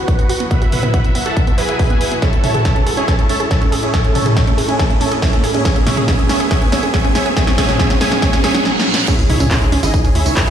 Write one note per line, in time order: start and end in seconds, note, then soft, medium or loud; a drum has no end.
0.00 2.19 B2 medium
0.00 2.19 F#3 medium
0.00 5.61 E4 medium
0.00 0.42 F#4 medium
0.00 2.19 F#4 medium
0.00 0.42 B4 medium
0.00 0.42 F#5 loud
0.00 riser medium
0.08 0.14 B3 medium
0.08 kick loud
0.08 closed hi-hat medium
0.19 0.25 B3 loud
0.19 closed hi-hat medium
0.29 0.33 F#4 loud
0.29 open hi-hat loud
0.40 0.46 B3 medium
0.40 closed hi-hat soft
0.51 0.57 B3 loud
0.51 0.59 B4 medium
0.51 0.59 E5 medium
0.51 0.59 F#5 medium
0.51 0.59 B5 loud
0.51 kick loud
0.51 closed hi-hat medium
0.62 0.66 F#4 loud
0.62 0.70 E5 medium
0.62 closed hi-hat soft
0.72 0.78 B3 medium
0.72 0.80 B4 medium
0.72 0.80 E5 medium
0.72 0.80 F#5 medium
0.72 0.80 B5 medium
0.72 open hi-hat loud
0.72 mid tom medium
0.83 0.89 B3 loud
0.83 0.91 E5 medium
0.83 closed hi-hat soft
0.83 mid tom medium
0.94 0.98 F#4 loud
0.94 1.02 B4 medium
0.94 1.02 E5 medium
0.94 1.02 F#5 medium
0.94 1.02 B5 loud
0.94 kick loud
0.94 closed hi-hat medium
1.04 1.10 B3 medium
1.04 1.12 E5 medium
1.04 closed hi-hat soft
1.15 1.21 B3 loud
1.15 1.23 E5 medium
1.15 open hi-hat loud
1.26 1.30 F#4 loud
1.26 1.34 A4 medium
1.26 1.34 E5 medium
1.26 1.34 F#5 medium
1.26 1.34 A5 loud
1.26 closed hi-hat soft
1.36 1.43 B3 medium
1.36 1.45 E5 medium
1.36 kick loud
1.36 closed hi-hat medium
1.47 1.53 B3 loud
1.47 1.55 E5 medium
1.47 closed hi-hat soft
1.58 2.14 G#4 medium
1.58 2.14 B4 medium
1.58 1.62 B4 loud
1.58 2.14 E5 medium
1.58 2.14 G#5 loud
1.58 open hi-hat loud
1.69 1.73 E5 loud
1.69 closed hi-hat medium
1.79 1.83 F#5 loud
1.79 kick loud
1.79 open hi-hat medium
1.90 1.94 B3 loud
1.90 closed hi-hat soft
2.01 2.03 B5 medium
2.01 open hi-hat loud
2.12 2.14 B3 medium
2.12 closed hi-hat soft
2.22 5.62 A2 medium
2.22 5.62 G#3 medium
2.22 8.61 C#4 medium
2.22 2.26 G#4 medium
2.22 2.30 A4 medium
2.22 2.30 C#5 medium
2.22 2.30 E5 medium
2.22 2.30 A5 medium
2.22 kick loud
2.22 snare soft
2.22 closed hi-hat medium
2.33 2.39 C#4 medium
2.33 2.41 A4 medium
2.33 closed hi-hat medium
2.44 2.50 C#4 medium
2.44 2.52 A4 medium
2.44 2.52 C#5 medium
2.44 2.52 E5 medium
2.44 2.52 A5 medium
2.44 open hi-hat loud
2.44 mid tom medium
2.54 2.58 G#4 medium
2.54 2.62 A4 medium
2.54 closed hi-hat soft
2.54 mid tom medium
2.65 2.71 C#4 medium
2.65 2.73 A4 medium
2.65 2.73 C#5 medium
2.65 2.73 E5 medium
2.65 2.73 A5 medium
2.65 kick loud
2.65 snare soft
2.65 closed hi-hat medium
2.76 2.82 C#4 medium
2.76 2.84 A4 medium
2.76 closed hi-hat soft
2.86 2.91 G#4 loud
2.86 2.95 A4 medium
2.86 open hi-hat loud
2.97 3.03 C#4 medium
2.97 3.05 G#4 medium
2.97 3.05 C#5 medium
2.97 3.05 E5 medium
2.97 3.05 G#5 medium
2.97 closed hi-hat soft
3.08 3.12 G#4 medium
3.08 3.16 A4 medium
3.08 3.16 C#5 medium
3.08 3.16 E5 medium
3.08 3.16 A5 medium
3.08 kick loud
3.08 snare medium
3.08 closed hi-hat medium
3.19 3.25 C#4 medium
3.19 3.27 A4 medium
3.19 closed hi-hat soft
3.29 3.35 C#4 medium
3.29 3.37 A4 medium
3.29 3.37 C#5 medium
3.29 3.37 E5 medium
3.29 3.37 A5 medium
3.29 open hi-hat loud
3.40 3.44 G#4 medium
3.40 3.48 A4 medium
3.40 closed hi-hat soft
3.51 3.57 C#4 medium
3.51 3.59 A4 medium
3.51 3.59 C#5 medium
3.51 3.59 E5 medium
3.51 3.59 A5 medium
3.51 kick loud
3.51 snare medium
3.51 closed hi-hat medium
3.61 3.67 C#4 loud
3.61 3.70 A4 medium
3.61 closed hi-hat soft
3.72 3.76 G#4 medium
3.72 3.80 A4 medium
3.72 open hi-hat loud
3.83 3.89 C#4 medium
3.83 3.91 G#4 medium
3.83 3.91 C#5 medium
3.83 3.91 E5 medium
3.83 3.91 G#5 medium
3.83 closed hi-hat soft
3.93 3.98 G#4 loud
3.93 4.02 A4 medium
3.93 4.02 C#5 medium
3.93 4.02 E5 medium
3.93 4.02 A5 medium
3.93 kick loud
3.93 snare medium
3.93 closed hi-hat medium
4.04 4.10 C#4 medium
4.04 4.12 A4 medium
4.04 closed hi-hat medium
4.15 4.21 C#4 loud
4.15 4.23 A4 medium
4.15 4.23 C#5 medium
4.15 4.23 E5 medium
4.15 4.23 A5 medium
4.15 open hi-hat loud
4.15 mid tom medium
4.26 4.30 G#4 loud
4.26 4.34 A4 medium
4.26 closed hi-hat medium
4.26 mid tom medium
4.36 4.42 C#4 medium
4.36 4.45 A4 medium
4.36 4.45 C#5 medium
4.36 4.45 E5 medium
4.36 4.45 A5 medium
4.36 kick loud
4.36 snare medium
4.36 closed hi-hat medium
4.47 4.53 C#4 loud
4.47 4.55 A4 medium
4.47 closed hi-hat soft
4.58 4.62 G#4 loud
4.58 4.66 A4 medium
4.58 open hi-hat loud
4.69 4.75 C#4 medium
4.69 4.77 G#4 medium
4.69 4.77 C#5 medium
4.69 4.77 E5 medium
4.69 4.77 G#5 medium
4.69 closed hi-hat soft
4.79 4.83 G#4 loud
4.79 4.87 A4 medium
4.79 4.87 C#5 medium
4.79 4.87 E5 medium
4.79 kick loud
4.79 snare medium
4.79 closed hi-hat medium
4.90 4.96 C#4 medium
4.90 4.98 A4 medium
4.90 closed hi-hat medium
5.01 5.07 C#4 medium
5.01 5.09 A4 medium
5.01 5.09 C#5 medium
5.01 5.09 E5 medium
5.01 5.09 A5 medium
5.01 open hi-hat loud
5.11 5.15 G#4 loud
5.11 5.20 A4 medium
5.11 closed hi-hat medium
5.22 5.28 C#4 medium
5.22 5.30 A4 medium
5.22 5.30 C#5 medium
5.22 5.30 E5 medium
5.22 5.30 A5 medium
5.22 kick loud
5.22 snare medium
5.22 open hi-hat medium
5.33 5.39 C#4 loud
5.33 5.41 A4 medium
5.33 closed hi-hat medium
5.44 5.48 G#4 medium
5.44 5.52 A4 medium
5.44 open hi-hat loud
5.54 5.60 C#4 medium
5.54 5.63 G#4 medium
5.54 5.62 C#5 medium
5.54 5.62 E5 medium
5.54 5.62 G#5 medium
5.54 closed hi-hat medium
5.65 8.62 A#2 medium
5.65 8.62 F#3 medium
5.65 8.62 F#4 medium
5.65 5.69 G#4 loud
5.65 5.73 G#4 medium
5.65 5.73 C#5 medium
5.65 5.73 E5 medium
5.65 5.73 G#5 medium
5.65 kick loud
5.65 snare medium
5.65 closed hi-hat medium
5.76 5.82 C#4 medium
5.76 5.84 G#4 medium
5.76 closed hi-hat medium
5.86 5.92 C#4 loud
5.86 5.95 G#4 medium
5.86 5.95 C#5 medium
5.86 5.95 E5 medium
5.86 5.95 G#5 medium
5.86 snare medium
5.86 open hi-hat loud
5.86 mid tom medium
5.97 6.01 G#4 loud
5.97 6.05 G#4 medium
5.97 closed hi-hat medium
5.97 mid tom medium
6.08 6.12 G#4 loud
6.08 6.16 G#4 medium
6.08 6.16 C#5 medium
6.08 6.16 E5 medium
6.08 6.16 G#5 loud
6.08 kick loud
6.08 snare medium
6.08 closed hi-hat medium
6.19 6.25 C#4 medium
6.19 6.27 G#4 medium
6.19 closed hi-hat medium
6.29 6.35 C#4 loud
6.29 6.38 G#4 medium
6.29 6.38 C#5 medium
6.29 6.38 E5 medium
6.29 6.38 G#5 medium
6.29 snare medium
6.29 open hi-hat loud
6.40 6.44 G#4 loud
6.40 6.48 G#4 medium
6.40 closed hi-hat medium
6.51 6.55 G#4 loud
6.51 6.59 G#4 medium
6.51 6.59 C#5 medium
6.51 6.59 E5 medium
6.51 6.59 G#5 loud
6.51 kick loud
6.51 snare medium
6.51 closed hi-hat medium
6.62 6.67 C#4 medium
6.62 6.70 G#4 medium
6.62 closed hi-hat medium
6.72 6.78 C#4 loud
6.72 6.80 G#4 medium
6.72 6.80 C#5 medium
6.72 6.80 E5 medium
6.72 6.80 G#5 medium
6.72 snare medium
6.72 open hi-hat loud
6.83 6.87 G#4 loud
6.83 6.91 G#4 medium
6.83 closed hi-hat medium
6.94 6.98 G#4 loud
6.94 7.02 G#4 medium
6.94 7.02 C#5 medium
6.94 7.02 E5 medium
6.94 7.02 G#5 loud
6.94 kick loud
6.94 snare medium
6.94 closed hi-hat medium
7.04 7.10 C#4 medium
7.04 7.13 G#4 medium
7.04 closed hi-hat medium
7.15 7.21 C#4 loud
7.15 7.23 G#4 medium
7.15 7.23 C#5 medium
7.15 7.23 E5 medium
7.15 7.23 G#5 loud
7.15 snare medium
7.15 open hi-hat loud
7.26 7.30 G#4 loud
7.26 7.34 G#4 medium
7.26 closed hi-hat medium
7.37 7.41 G#4 loud
7.37 7.45 G#4 medium
7.37 7.45 C#5 medium
7.37 7.45 E5 medium
7.37 7.45 G#5 loud
7.37 kick loud
7.37 snare medium
7.37 closed hi-hat medium
7.47 7.53 C#4 medium
7.47 7.55 G#4 medium
7.47 snare medium
7.47 closed hi-hat medium
7.58 7.66 G#4 medium
7.58 7.62 G#4 loud
7.58 7.66 C#5 medium
7.58 7.66 E5 medium
7.58 7.66 G#5 loud
7.58 kick medium
7.58 snare loud
7.58 open hi-hat loud
7.58 mid tom medium
7.69 7.75 C#4 medium
7.69 7.77 G#4 medium
7.69 snare medium
7.69 closed hi-hat medium
7.69 mid tom medium
7.79 7.87 G#4 medium
7.79 7.83 G#4 loud
7.79 7.88 C#5 medium
7.79 7.88 E5 medium
7.79 7.87 G#5 loud
7.79 kick loud
7.79 snare medium
7.79 closed hi-hat medium
7.90 7.96 C#4 medium
7.90 7.98 G#4 medium
7.90 snare medium
7.90 closed hi-hat medium
8.01 8.09 G#4 medium
8.01 8.05 G#4 loud
8.01 8.09 C#5 medium
8.01 8.09 E5 medium
8.01 8.09 G#5 loud
8.01 snare loud
8.01 open hi-hat loud
8.12 8.18 C#4 medium
8.12 8.20 G#4 medium
8.12 snare medium
8.12 closed hi-hat medium
8.22 8.30 G#4 medium
8.22 8.26 G#4 loud
8.22 8.30 C#5 medium
8.22 8.30 E5 medium
8.22 8.30 G#5 loud
8.22 kick loud
8.22 snare loud
8.22 closed hi-hat medium
8.22 reverse cymbal medium
8.33 8.39 C#4 medium
8.33 8.41 G#4 medium
8.33 snare medium
8.33 closed hi-hat medium
8.44 8.48 G#4 loud
8.44 8.52 G#4 medium
8.44 8.52 C#5 medium
8.44 8.52 E5 medium
8.44 8.52 G#5 loud
8.44 snare loud
8.44 open hi-hat loud
8.55 8.60 C#4 medium
8.55 8.63 G#4 medium
8.55 snare loud
8.55 closed hi-hat medium
8.65 snare medium
8.80 snare medium
8.94 snare loud
9.08 10.50 E3 medium
9.08 10.50 G#3 medium
9.08 9.12 C#4 loud
9.08 10.50 C#4 medium
9.08 9.16 E4 medium
9.08 10.50 G#4 medium
9.08 9.16 G#4 medium
9.08 9.16 C#5 medium
9.08 9.16 E5 loud
9.08 kick loud
9.08 closed hi-hat medium
9.08 tambourine medium
9.08 crash loud
9.08 impact medium
9.19 9.27 C#2 medium
9.19 9.23 E4 medium
9.19 9.27 G#4 medium
9.19 closed hi-hat medium
9.19 tambourine soft
9.29 9.38 C#2 medium
9.29 9.33 D#4 medium
9.29 9.37 E4 medium
9.29 9.37 G#4 medium
9.29 9.37 C#5 medium
9.29 9.37 E5 medium
9.29 open hi-hat loud
9.29 mid tom medium
9.40 9.49 C#2 medium
9.40 9.44 C#4 loud
9.40 9.48 G#4 medium
9.40 closed hi-hat medium
9.40 mid tom medium
9.40 tambourine medium
9.51 9.55 E4 medium
9.51 9.59 E4 medium
9.51 9.59 G#4 medium
9.51 9.59 C#5 medium
9.51 9.59 E5 medium
9.51 kick loud
9.51 clap loud
9.51 closed hi-hat medium
9.51 tambourine medium
9.62 9.70 C#2 medium
9.62 9.66 D#4 medium
9.62 9.70 G#4 medium
9.62 closed hi-hat medium
9.62 tambourine soft
9.72 9.81 C#2 medium
9.72 9.76 C#4 loud
9.72 9.80 G#4 medium
9.72 open hi-hat loud
9.83 9.91 G#1 medium
9.83 9.91 D#4 medium
9.83 9.87 E4 medium
9.83 9.91 E4 medium
9.83 9.91 G#4 medium
9.83 9.91 D#5 medium
9.83 closed hi-hat medium
9.83 tambourine medium
9.94 9.98 D#4 medium
9.94 10.02 G#4 medium
9.94 kick loud
9.94 closed hi-hat medium
9.94 tambourine medium
10.04 10.13 C#2 medium
10.04 10.08 C#4 loud
10.04 10.12 G#4 medium
10.04 closed hi-hat medium
10.04 tambourine soft
10.15 10.24 D#2 loud
10.15 10.50 E4 medium
10.15 10.19 E4 medium
10.15 10.50 G#4 medium
10.15 10.50 C#5 medium
10.15 10.50 E5 loud
10.15 open hi-hat loud
10.26 10.34 C#2 medium
10.26 10.30 D#4 medium
10.26 closed hi-hat medium
10.26 tambourine medium
10.37 10.41 C#4 loud
10.37 kick loud
10.37 clap loud
10.37 closed hi-hat medium
10.37 tambourine medium